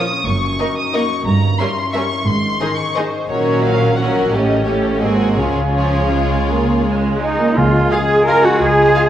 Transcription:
0.00 0.28 A#2 medium
0.00 0.28 F3 medium
0.00 0.42 A#3 soft
0.00 0.10 C#4 soft
0.00 0.28 F4 soft
0.00 0.76 A#4 soft
0.00 1.93 C#5 soft
0.00 0.27 D#6 medium
0.12 1.42 C#4 soft
0.26 0.53 F#1 medium
0.26 0.52 F#2 medium
0.26 1.28 F#2 medium
0.26 0.77 C#6 medium
0.43 1.09 A#3 soft
0.59 0.68 A#3 medium
0.59 0.68 D#4 soft
0.59 0.93 D#4 soft
0.59 0.68 A#4 soft
0.59 0.67 D#5 soft
0.77 1.76 A#4 soft
0.77 0.94 D#6 medium
0.94 1.03 A#3 soft
0.94 1.28 D#4 soft
0.94 1.03 D#4 medium
0.94 1.02 A#4 soft
0.94 1.02 D#5 soft
0.94 1.26 C#6 medium
1.10 2.29 A#3 soft
1.26 1.52 G1 medium
1.26 1.52 G2 medium
1.26 2.29 G2 medium
1.26 1.59 A#5 medium
1.43 2.29 C#4 soft
1.59 1.68 G3 soft
1.59 1.68 C#4 soft
1.59 2.10 E4 soft
1.59 1.68 A#4 soft
1.59 1.68 E5 medium
1.59 1.95 C6 medium
1.77 2.29 A#4 soft
1.94 2.03 G3 medium
1.94 2.03 C#4 medium
1.94 2.03 A#4 medium
1.94 2.29 C#5 soft
1.94 2.02 E5 medium
1.94 2.26 C#6 medium
2.11 2.29 E4 soft
2.27 2.54 G#1 medium
2.27 2.54 G#2 medium
2.27 3.32 G#2 medium
2.27 2.79 C6 medium
2.45 3.12 D#4 soft
2.60 3.32 D#3 soft
2.60 2.69 D#3 soft
2.60 2.69 D#4 soft
2.60 2.68 G#4 soft
2.60 2.69 D#5 soft
2.77 3.32 G#4 soft
2.77 2.96 C#6 medium
2.96 3.05 D#3 soft
2.96 3.05 D#4 medium
2.96 3.04 G#4 soft
2.96 3.30 C5 medium
2.96 3.04 D#5 soft
2.96 3.32 D#5 soft
3.14 3.32 D#4 soft
3.29 4.28 A#1 medium
3.29 4.28 A#2 medium
3.29 4.33 A#2 medium
3.29 3.95 F#3 medium
3.29 3.95 C#4 medium
3.29 3.95 F#4 medium
3.29 3.95 A#4 medium
3.29 3.63 C#5 medium
3.46 4.15 C#4 soft
3.62 3.98 F#4 soft
3.62 3.98 F5 medium
3.81 4.83 C#5 soft
3.96 4.32 F#3 medium
3.96 4.31 C#4 medium
3.96 4.32 F#4 soft
3.96 4.34 F#4 soft
3.96 4.32 A#4 medium
3.96 4.31 F#5 medium
4.16 4.47 C#4 soft
4.31 5.00 A1 medium
4.31 5.00 A2 medium
4.31 5.03 A2 soft
4.31 4.65 A3 soft
4.31 4.64 C#4 medium
4.31 4.65 G4 soft
4.31 4.65 D#5 medium
4.49 5.03 C#4 soft
4.65 5.01 A3 soft
4.65 5.01 C#4 medium
4.65 5.01 G4 soft
4.65 5.04 G4 soft
4.65 5.01 C#5 medium
4.84 5.04 C#5 soft
5.00 5.37 G#1 soft
5.00 5.39 G#2 soft
5.00 5.37 G#2 soft
5.00 5.37 A#3 soft
5.00 5.37 C4 soft
5.00 5.37 F#4 soft
5.00 5.36 G#4 medium
5.00 5.36 D#5 medium
5.20 5.39 F#4 soft
5.20 5.39 A#4 soft
5.36 7.40 C#2 soft
5.36 7.22 C#3 medium
5.36 6.48 C#3 soft
5.36 5.70 G#3 soft
5.36 5.70 C#4 soft
5.36 7.40 F4 soft
5.36 7.36 G#4 medium
5.36 7.40 C#5 medium
5.55 6.65 C#4 soft
5.75 6.10 F3 medium
5.75 6.30 F4 soft
5.95 7.03 G#4 soft
6.13 6.49 G#3 medium
6.13 7.22 C#5 soft
6.31 6.84 F4 soft
6.49 7.57 C#3 soft
6.49 6.85 A#3 medium
6.66 7.73 C#4 soft
6.85 7.39 G#3 medium
6.85 7.39 F4 soft
7.04 8.09 G#4 soft
7.22 7.55 D#4 medium
7.22 7.59 D#4 medium
7.22 8.26 C#5 soft
7.22 7.55 D#5 medium
7.40 7.57 A#3 soft
7.40 7.91 F4 soft
7.56 7.86 C#2 medium
7.56 8.06 C#3 medium
7.56 8.59 C#3 medium
7.56 9.09 G#3 medium
7.56 7.92 F4 medium
7.56 7.93 F4 soft
7.56 9.09 F4 medium
7.56 7.92 F5 soft
7.56 9.09 G#5 soft
7.74 8.75 C#4 soft
7.91 8.00 F4 soft
7.91 8.29 G#4 medium
7.91 8.27 G#4 medium
7.91 7.99 F5 soft
7.91 8.00 F5 soft
7.91 8.27 G#5 medium
8.10 9.09 G#4 soft
8.27 8.36 F4 soft
8.27 8.43 A#4 medium
8.27 8.46 A#4 medium
8.27 9.09 C#5 soft
8.27 8.36 F5 soft
8.27 8.45 A#5 medium
8.43 8.60 F#4 medium
8.43 8.61 F#4 medium
8.43 8.61 F#5 medium
8.60 8.89 C#2 medium
8.60 9.09 C#3 medium
8.60 9.09 G#4 medium
8.60 9.09 G#5 medium
8.77 9.09 C#4 soft
8.94 9.02 F4 soft
8.94 9.03 F5 soft

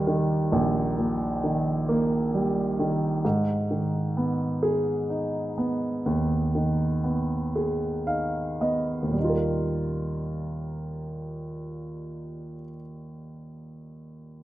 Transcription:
0.00 0.48 D#2 soft
0.00 0.98 A#2 soft
0.00 0.07 D#3 soft
0.00 1.39 G3 soft
0.00 0.94 A#3 soft
0.07 1.42 D#3 soft
0.52 3.21 A#1 medium
0.98 2.75 A#2 soft
1.44 2.78 D#3 soft
1.89 3.21 A#3 soft
2.35 3.22 G3 soft
2.79 3.23 D#3 soft
3.25 6.01 G#2 soft
3.71 5.53 D#3 soft
4.17 5.56 B3 soft
4.63 6.50 G#4 soft
5.10 7.00 D#4 soft
5.58 7.03 B3 soft
6.06 9.01 D#2 soft
6.55 8.58 D#3 soft
7.04 8.59 B3 soft
7.56 9.13 G#4 soft
8.07 9.13 D#4 soft
8.07 8.57 F5 soft
8.61 9.15 B3 soft
8.61 9.13 D#5 soft
9.02 12.53 D#2 soft
9.08 12.59 A#2 soft
9.13 12.64 G3 soft
9.19 12.70 D#4 soft
9.24 12.75 F4 soft
9.29 12.80 A#4 soft

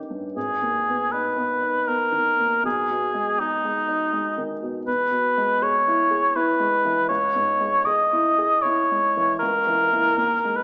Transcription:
0.00 0.33 G1 soft
0.00 0.10 G2 soft
0.00 0.25 D#3 soft
0.00 0.39 C#4 soft
0.00 0.38 D#4 soft
0.10 0.36 G2 soft
0.36 2.61 G#1 soft
0.36 1.13 G#4 medium
0.62 1.03 D#2 soft
0.89 1.28 B3 soft
1.12 1.53 D#4 soft
1.12 1.89 B4 medium
1.37 1.78 B3 soft
1.62 2.03 D#4 soft
1.88 2.29 B3 soft
1.88 2.65 A#4 medium
2.12 2.54 D#3 soft
2.39 2.65 D#2 soft
2.63 4.82 B1 soft
2.63 3.41 G#4 medium
2.90 3.30 B2 soft
3.14 3.53 G#3 soft
3.38 3.77 D#4 soft
3.38 4.50 D#4 medium
3.64 4.03 G#3 soft
3.88 4.27 D#4 soft
4.13 4.52 G#3 soft
4.38 4.77 D#3 soft
4.62 4.87 B2 soft
4.86 7.05 E2 soft
4.86 5.64 B4 medium
5.11 5.51 B2 soft
5.37 5.77 G#3 soft
5.62 6.01 G#4 soft
5.62 6.38 C#5 medium
5.88 6.26 E4 soft
6.11 6.50 G#4 soft
6.36 6.75 E4 soft
6.36 7.08 B4 medium
6.60 6.99 G#3 soft
6.85 7.10 E3 soft
7.09 9.36 C#2 soft
7.09 7.87 C#5 medium
7.36 7.76 G#2 soft
7.61 8.01 G#3 soft
7.85 8.27 G#4 soft
7.85 8.64 D#5 medium
8.13 8.53 E4 soft
8.38 8.79 G#4 soft
8.62 9.06 E4 soft
8.62 9.38 C#5 medium
8.91 9.31 G#3 soft
9.17 9.41 E3 soft
9.39 10.15 C#2 soft
9.39 10.58 A#4 medium
9.67 10.07 E3 soft
9.92 10.15 A#3 soft
9.92 10.15 E4 soft
10.17 10.63 D#2 soft
10.45 10.63 G#3 soft
10.56 10.63 B4 medium

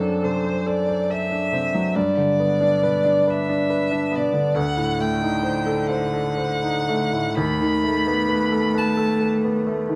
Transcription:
0.00 1.91 F#2 soft
0.00 1.75 F#3 soft
0.00 0.14 C4 soft
0.00 0.35 D4 soft
0.00 0.26 A4 medium
0.23 0.55 C3 soft
0.23 0.57 A4 soft
0.23 0.69 C5 medium
0.45 0.79 C5 soft
0.66 1.00 A4 soft
0.66 1.12 D5 medium
0.88 1.22 C5 soft
1.10 1.44 A4 soft
1.10 1.97 E5 medium
1.31 1.66 D4 soft
1.53 1.85 C3 soft
1.53 1.87 C4 soft
1.75 1.96 F#3 soft
1.95 4.54 G2 soft
1.95 3.32 D5 medium
2.17 2.52 D3 soft
2.40 2.75 B3 soft
2.61 2.97 D4 soft
2.83 3.17 B2 soft
2.83 3.19 B4 soft
3.05 3.40 D4 soft
3.28 3.62 B4 soft
3.28 4.17 E5 medium
3.49 3.84 D4 soft
3.70 4.05 B4 soft
3.91 4.26 D4 soft
4.12 4.47 B3 soft
4.16 4.47 B2 medium
4.16 4.57 D5 medium
4.34 4.56 D3 soft
4.55 7.33 D2 medium
4.55 7.35 D3 medium
4.55 5.02 F#5 medium
4.77 5.14 A2 soft
4.99 5.36 A3 soft
4.99 5.90 G5 medium
5.22 5.58 D#4 soft
5.43 5.81 C5 soft
5.66 6.04 A4 soft
5.90 6.28 C5 soft
5.90 7.35 F#5 medium
6.13 6.53 A4 soft
6.37 6.78 C5 soft
6.63 7.03 D#4 soft
6.88 7.29 A3 soft
7.13 7.38 A2 soft
7.37 9.95 D#2 medium
7.37 9.95 A3 medium
7.37 8.79 B5 medium
7.61 7.99 D#3 soft
7.84 8.22 A3 soft
8.07 8.45 B3 soft
8.29 8.67 B4 soft
8.52 8.90 A4 soft
8.75 9.13 B4 soft
8.75 9.23 A5 medium
8.97 9.35 A4 soft
9.21 9.58 B4 soft
9.44 9.82 B3 soft
9.67 9.95 A3 soft
9.89 9.95 D#3 soft

